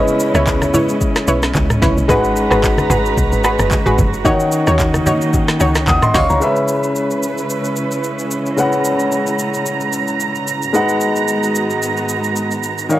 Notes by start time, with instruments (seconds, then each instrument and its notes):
Already playing: grand piano C#3 C#4 B4 D#5, string section C#3 G#3 B3 C#4 E4
0.08 shaker
0.20 shaker
0.35 log drum bass C#2, synth pluck E4 B4 C#5, cross-stick, shaker
0.47 kick, clap, shaker
0.62 cross-stick, high conga, shaker
0.74 synth pluck E4 B4 C#5, high conga, low conga, shaker
0.89 shaker
1.01 kick, shaker
1.16 cross-stick, snare, shaker
1.28 log drum bass B1, synth pluck E4 B4 C#5, shaker
1.43 cross-stick, snare, shaker
1.55 log drum bass C#2, kick, clap, high conga, shaker
1.70 cross-stick, mid tom, shaker
1.82 log drum bass B1, synth pluck E4 B4 C#5, kick, snare, high conga, low conga, shaker
1.97 log drum bass B1, shaker
2.08 log drum bass G#1, grand piano G#3 D#4 B4 F#5, synth pluck F#4 G#4 B4, string section F#4 B4 A#5, kick, low conga, shaker
2.24 shaker
2.36 shaker
2.51 log drum bass G#1, synth pluck F#4 G#4 B4, cross-stick, shaker
2.64 kick, clap, shaker
2.78 cross-stick, high conga, shaker
2.90 log drum bass G#1, synth pluck F#4 G#4 B4, high conga, low conga, shaker
3.06 shaker
3.17 log drum bass B1, kick, shaker
3.32 log drum bass G#1, shaker
3.44 synth pluck F#4 G#4 B4, cross-stick, shaker
3.59 log drum bass F#1, cross-stick, shaker
3.71 kick, clap, high conga, shaker
3.86 log drum bass G#1, synth pluck F#4 G#4 B4, mid tom, shaker
3.98 log drum bass F#1, kick, high conga, low conga, shaker
4.13 shaker
4.24 grand piano D#3 D#4 C#5 F#5, string section D#3 A#3 C#4 D#4, synth pluck D#4 F#4 C#5, kick, low conga, shaker
4.40 shaker
4.52 shaker
4.67 log drum bass D#2, synth pluck D#4 F#4 C#5, cross-stick, shaker
4.79 kick, clap, shaker
4.94 cross-stick, high conga, shaker
5.06 synth pluck D#4 F#4 C#5, high conga, low conga, shaker
5.21 shaker
5.33 kick, low conga, shaker
5.48 cross-stick, snare, shaker
5.60 log drum bass C#2, synth pluck D#4 F#4 C#5, shaker
5.75 cross-stick, snare, shaker
5.87 log drum bass D#2, grand piano F#5 D#6, kick, clap, high conga, shaker
6.02 grand piano D#5 C6, cross-stick, mid tom, shaker
6.14 log drum bass C#2, synth pluck D#4 F#4 C#5, grand piano F5 C#6, kick, snare, open hi-hat, high conga, low conga, shaker
6.30 log drum bass C#2, grand piano C#5 A#5, shaker
6.40 grand piano C#3 C#4 B4 E5, string section C#3 G#3 C#4 E4 B4, shaker
6.56 shaker
6.68 shaker
6.83 shaker
6.96 shaker
7.11 shaker
7.23 shaker
7.38 shaker
7.50 shaker
7.64 shaker
7.76 shaker
7.91 shaker
8.04 shaker
8.19 shaker
8.31 shaker
8.46 shaker
8.57 grand piano C#3 C#4 B4 F#5, string section A#5, shaker
8.72 shaker
8.85 shaker
8.99 shaker
9.12 shaker
9.27 shaker
9.39 shaker
9.54 shaker
9.66 shaker
9.81 shaker
9.93 shaker
10.08 shaker
10.20 shaker
10.35 shaker
10.48 shaker
10.62 shaker
10.73 string section G#2 D#3 B3 F#4, grand piano G#3 D#4 B4 F#5, shaker
10.89 shaker
11.01 shaker
11.16 shaker
11.28 shaker
11.43 shaker
11.55 shaker
11.70 shaker
11.82 shaker
11.97 shaker
12.09 shaker
12.24 shaker
12.36 shaker
12.51 shaker
12.63 shaker
12.78 shaker
12.89 string section D#2 D#3 F3 F#3 C#5, grand piano D#3 D#4 C#5 F5, shaker